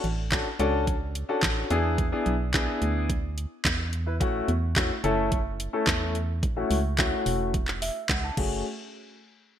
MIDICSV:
0, 0, Header, 1, 4, 480
1, 0, Start_track
1, 0, Key_signature, 3, "minor"
1, 0, Tempo, 555556
1, 1715, Time_signature, 4, 2, 24, 8
1, 8286, End_track
2, 0, Start_track
2, 0, Title_t, "Grand piano"
2, 0, Program_c, 0, 0
2, 269, Note_on_c, 0, 61, 82
2, 271, Note_on_c, 0, 62, 71
2, 273, Note_on_c, 0, 66, 77
2, 274, Note_on_c, 0, 69, 86
2, 391, Note_off_c, 0, 61, 0
2, 392, Note_off_c, 0, 62, 0
2, 393, Note_off_c, 0, 66, 0
2, 393, Note_off_c, 0, 69, 0
2, 512, Note_on_c, 0, 61, 98
2, 513, Note_on_c, 0, 62, 90
2, 514, Note_on_c, 0, 66, 86
2, 516, Note_on_c, 0, 69, 105
2, 810, Note_off_c, 0, 61, 0
2, 811, Note_off_c, 0, 62, 0
2, 811, Note_off_c, 0, 66, 0
2, 812, Note_off_c, 0, 69, 0
2, 1112, Note_on_c, 0, 61, 82
2, 1113, Note_on_c, 0, 62, 74
2, 1114, Note_on_c, 0, 66, 73
2, 1115, Note_on_c, 0, 69, 88
2, 1461, Note_off_c, 0, 62, 0
2, 1470, Note_off_c, 0, 61, 0
2, 1471, Note_off_c, 0, 66, 0
2, 1471, Note_off_c, 0, 69, 0
2, 1473, Note_on_c, 0, 59, 90
2, 1473, Note_on_c, 0, 62, 85
2, 1475, Note_on_c, 0, 64, 85
2, 1476, Note_on_c, 0, 68, 102
2, 1762, Note_off_c, 0, 59, 0
2, 1762, Note_off_c, 0, 62, 0
2, 1763, Note_off_c, 0, 64, 0
2, 1764, Note_off_c, 0, 68, 0
2, 1833, Note_on_c, 0, 59, 84
2, 1834, Note_on_c, 0, 62, 72
2, 1837, Note_on_c, 0, 64, 74
2, 1838, Note_on_c, 0, 68, 89
2, 2012, Note_off_c, 0, 59, 0
2, 2013, Note_off_c, 0, 62, 0
2, 2014, Note_off_c, 0, 64, 0
2, 2015, Note_off_c, 0, 68, 0
2, 2194, Note_on_c, 0, 59, 90
2, 2194, Note_on_c, 0, 62, 87
2, 2195, Note_on_c, 0, 64, 83
2, 2197, Note_on_c, 0, 68, 101
2, 2669, Note_off_c, 0, 59, 0
2, 2670, Note_off_c, 0, 62, 0
2, 2670, Note_off_c, 0, 64, 0
2, 2671, Note_off_c, 0, 68, 0
2, 3511, Note_on_c, 0, 64, 52
2, 3516, Note_on_c, 0, 71, 57
2, 3573, Note_off_c, 0, 64, 0
2, 3575, Note_off_c, 0, 71, 0
2, 3630, Note_on_c, 0, 57, 89
2, 3631, Note_on_c, 0, 61, 81
2, 3632, Note_on_c, 0, 64, 78
2, 3634, Note_on_c, 0, 66, 100
2, 3870, Note_off_c, 0, 57, 0
2, 3871, Note_off_c, 0, 61, 0
2, 3871, Note_off_c, 0, 64, 0
2, 3872, Note_off_c, 0, 66, 0
2, 4113, Note_on_c, 0, 57, 82
2, 4113, Note_on_c, 0, 61, 76
2, 4115, Note_on_c, 0, 64, 80
2, 4117, Note_on_c, 0, 66, 92
2, 4233, Note_off_c, 0, 57, 0
2, 4233, Note_off_c, 0, 61, 0
2, 4234, Note_off_c, 0, 64, 0
2, 4235, Note_off_c, 0, 66, 0
2, 4351, Note_on_c, 0, 57, 97
2, 4351, Note_on_c, 0, 61, 90
2, 4354, Note_on_c, 0, 64, 93
2, 4355, Note_on_c, 0, 69, 112
2, 4650, Note_off_c, 0, 57, 0
2, 4650, Note_off_c, 0, 61, 0
2, 4651, Note_off_c, 0, 64, 0
2, 4652, Note_off_c, 0, 69, 0
2, 4951, Note_on_c, 0, 57, 85
2, 4952, Note_on_c, 0, 61, 76
2, 4953, Note_on_c, 0, 64, 74
2, 4956, Note_on_c, 0, 69, 94
2, 5309, Note_off_c, 0, 57, 0
2, 5310, Note_off_c, 0, 61, 0
2, 5310, Note_off_c, 0, 64, 0
2, 5312, Note_off_c, 0, 69, 0
2, 5671, Note_on_c, 0, 57, 86
2, 5673, Note_on_c, 0, 61, 78
2, 5675, Note_on_c, 0, 64, 75
2, 5675, Note_on_c, 0, 66, 90
2, 5851, Note_off_c, 0, 57, 0
2, 5852, Note_off_c, 0, 61, 0
2, 5853, Note_off_c, 0, 64, 0
2, 5853, Note_off_c, 0, 66, 0
2, 6032, Note_on_c, 0, 57, 94
2, 6033, Note_on_c, 0, 61, 89
2, 6035, Note_on_c, 0, 64, 85
2, 6037, Note_on_c, 0, 66, 109
2, 6509, Note_off_c, 0, 57, 0
2, 6509, Note_off_c, 0, 61, 0
2, 6510, Note_off_c, 0, 64, 0
2, 6511, Note_off_c, 0, 66, 0
2, 6755, Note_on_c, 0, 76, 75
2, 6978, Note_off_c, 0, 76, 0
2, 6996, Note_on_c, 0, 78, 75
2, 7108, Note_off_c, 0, 78, 0
2, 7115, Note_on_c, 0, 81, 77
2, 7227, Note_off_c, 0, 81, 0
2, 7236, Note_on_c, 0, 57, 85
2, 7236, Note_on_c, 0, 61, 78
2, 7236, Note_on_c, 0, 66, 81
2, 7236, Note_on_c, 0, 68, 96
2, 7459, Note_off_c, 0, 57, 0
2, 7459, Note_off_c, 0, 61, 0
2, 7459, Note_off_c, 0, 66, 0
2, 7459, Note_off_c, 0, 68, 0
2, 8286, End_track
3, 0, Start_track
3, 0, Title_t, "FM bass"
3, 0, Program_c, 1, 39
3, 35, Note_on_c, 1, 33, 101
3, 406, Note_off_c, 1, 33, 0
3, 514, Note_on_c, 1, 37, 92
3, 1071, Note_off_c, 1, 37, 0
3, 1233, Note_on_c, 1, 33, 96
3, 1419, Note_off_c, 1, 33, 0
3, 1474, Note_on_c, 1, 40, 102
3, 1846, Note_off_c, 1, 40, 0
3, 1956, Note_on_c, 1, 35, 100
3, 2327, Note_off_c, 1, 35, 0
3, 2435, Note_on_c, 1, 38, 96
3, 2992, Note_off_c, 1, 38, 0
3, 3153, Note_on_c, 1, 40, 95
3, 3634, Note_on_c, 1, 33, 108
3, 3647, Note_off_c, 1, 40, 0
3, 3820, Note_off_c, 1, 33, 0
3, 3874, Note_on_c, 1, 40, 102
3, 4246, Note_off_c, 1, 40, 0
3, 4355, Note_on_c, 1, 30, 94
3, 4911, Note_off_c, 1, 30, 0
3, 5073, Note_on_c, 1, 40, 95
3, 5555, Note_on_c, 1, 33, 117
3, 5568, Note_off_c, 1, 40, 0
3, 5741, Note_off_c, 1, 33, 0
3, 5794, Note_on_c, 1, 37, 104
3, 6166, Note_off_c, 1, 37, 0
3, 6275, Note_on_c, 1, 28, 96
3, 6831, Note_off_c, 1, 28, 0
3, 6993, Note_on_c, 1, 37, 96
3, 7179, Note_off_c, 1, 37, 0
3, 7235, Note_on_c, 1, 30, 98
3, 7458, Note_off_c, 1, 30, 0
3, 8286, End_track
4, 0, Start_track
4, 0, Title_t, "Drums"
4, 34, Note_on_c, 9, 42, 47
4, 120, Note_off_c, 9, 42, 0
4, 275, Note_on_c, 9, 42, 76
4, 276, Note_on_c, 9, 36, 117
4, 276, Note_on_c, 9, 39, 102
4, 277, Note_on_c, 9, 38, 79
4, 362, Note_off_c, 9, 36, 0
4, 362, Note_off_c, 9, 42, 0
4, 363, Note_off_c, 9, 39, 0
4, 364, Note_off_c, 9, 38, 0
4, 514, Note_on_c, 9, 42, 56
4, 601, Note_off_c, 9, 42, 0
4, 755, Note_on_c, 9, 36, 109
4, 755, Note_on_c, 9, 42, 82
4, 841, Note_off_c, 9, 36, 0
4, 842, Note_off_c, 9, 42, 0
4, 996, Note_on_c, 9, 42, 67
4, 1083, Note_off_c, 9, 42, 0
4, 1233, Note_on_c, 9, 36, 115
4, 1234, Note_on_c, 9, 39, 109
4, 1234, Note_on_c, 9, 42, 59
4, 1235, Note_on_c, 9, 38, 89
4, 1319, Note_off_c, 9, 36, 0
4, 1320, Note_off_c, 9, 42, 0
4, 1321, Note_off_c, 9, 38, 0
4, 1321, Note_off_c, 9, 39, 0
4, 1473, Note_on_c, 9, 42, 56
4, 1559, Note_off_c, 9, 42, 0
4, 1714, Note_on_c, 9, 36, 119
4, 1714, Note_on_c, 9, 42, 74
4, 1800, Note_off_c, 9, 36, 0
4, 1800, Note_off_c, 9, 42, 0
4, 1953, Note_on_c, 9, 42, 48
4, 2039, Note_off_c, 9, 42, 0
4, 2195, Note_on_c, 9, 36, 121
4, 2195, Note_on_c, 9, 42, 77
4, 2196, Note_on_c, 9, 39, 105
4, 2197, Note_on_c, 9, 38, 80
4, 2281, Note_off_c, 9, 42, 0
4, 2282, Note_off_c, 9, 36, 0
4, 2282, Note_off_c, 9, 39, 0
4, 2283, Note_off_c, 9, 38, 0
4, 2434, Note_on_c, 9, 42, 59
4, 2521, Note_off_c, 9, 42, 0
4, 2675, Note_on_c, 9, 36, 105
4, 2675, Note_on_c, 9, 42, 82
4, 2761, Note_off_c, 9, 36, 0
4, 2762, Note_off_c, 9, 42, 0
4, 2917, Note_on_c, 9, 42, 67
4, 3004, Note_off_c, 9, 42, 0
4, 3153, Note_on_c, 9, 36, 114
4, 3155, Note_on_c, 9, 39, 108
4, 3155, Note_on_c, 9, 42, 57
4, 3156, Note_on_c, 9, 38, 87
4, 3239, Note_off_c, 9, 36, 0
4, 3241, Note_off_c, 9, 42, 0
4, 3242, Note_off_c, 9, 38, 0
4, 3242, Note_off_c, 9, 39, 0
4, 3394, Note_on_c, 9, 42, 59
4, 3481, Note_off_c, 9, 42, 0
4, 3635, Note_on_c, 9, 36, 119
4, 3636, Note_on_c, 9, 42, 78
4, 3721, Note_off_c, 9, 36, 0
4, 3722, Note_off_c, 9, 42, 0
4, 3875, Note_on_c, 9, 42, 50
4, 3961, Note_off_c, 9, 42, 0
4, 4115, Note_on_c, 9, 42, 77
4, 4116, Note_on_c, 9, 36, 123
4, 4116, Note_on_c, 9, 39, 105
4, 4117, Note_on_c, 9, 38, 86
4, 4202, Note_off_c, 9, 36, 0
4, 4202, Note_off_c, 9, 39, 0
4, 4202, Note_off_c, 9, 42, 0
4, 4203, Note_off_c, 9, 38, 0
4, 4354, Note_on_c, 9, 42, 57
4, 4441, Note_off_c, 9, 42, 0
4, 4595, Note_on_c, 9, 36, 115
4, 4595, Note_on_c, 9, 42, 84
4, 4681, Note_off_c, 9, 36, 0
4, 4681, Note_off_c, 9, 42, 0
4, 4837, Note_on_c, 9, 42, 69
4, 4923, Note_off_c, 9, 42, 0
4, 5073, Note_on_c, 9, 36, 123
4, 5074, Note_on_c, 9, 39, 115
4, 5074, Note_on_c, 9, 42, 59
4, 5075, Note_on_c, 9, 38, 91
4, 5160, Note_off_c, 9, 36, 0
4, 5161, Note_off_c, 9, 39, 0
4, 5161, Note_off_c, 9, 42, 0
4, 5162, Note_off_c, 9, 38, 0
4, 5314, Note_on_c, 9, 42, 57
4, 5400, Note_off_c, 9, 42, 0
4, 5555, Note_on_c, 9, 36, 119
4, 5556, Note_on_c, 9, 42, 79
4, 5641, Note_off_c, 9, 36, 0
4, 5642, Note_off_c, 9, 42, 0
4, 5794, Note_on_c, 9, 46, 71
4, 5880, Note_off_c, 9, 46, 0
4, 6035, Note_on_c, 9, 42, 78
4, 6036, Note_on_c, 9, 36, 125
4, 6036, Note_on_c, 9, 39, 108
4, 6037, Note_on_c, 9, 38, 85
4, 6121, Note_off_c, 9, 42, 0
4, 6122, Note_off_c, 9, 36, 0
4, 6122, Note_off_c, 9, 39, 0
4, 6123, Note_off_c, 9, 38, 0
4, 6274, Note_on_c, 9, 46, 78
4, 6361, Note_off_c, 9, 46, 0
4, 6516, Note_on_c, 9, 36, 109
4, 6516, Note_on_c, 9, 42, 81
4, 6602, Note_off_c, 9, 36, 0
4, 6602, Note_off_c, 9, 42, 0
4, 6634, Note_on_c, 9, 39, 67
4, 6720, Note_off_c, 9, 39, 0
4, 6757, Note_on_c, 9, 46, 99
4, 6843, Note_off_c, 9, 46, 0
4, 6993, Note_on_c, 9, 36, 121
4, 6994, Note_on_c, 9, 39, 113
4, 6994, Note_on_c, 9, 42, 61
4, 6995, Note_on_c, 9, 38, 88
4, 7080, Note_off_c, 9, 36, 0
4, 7081, Note_off_c, 9, 39, 0
4, 7081, Note_off_c, 9, 42, 0
4, 7082, Note_off_c, 9, 38, 0
4, 7235, Note_on_c, 9, 36, 102
4, 7235, Note_on_c, 9, 49, 84
4, 7321, Note_off_c, 9, 36, 0
4, 7321, Note_off_c, 9, 49, 0
4, 8286, End_track
0, 0, End_of_file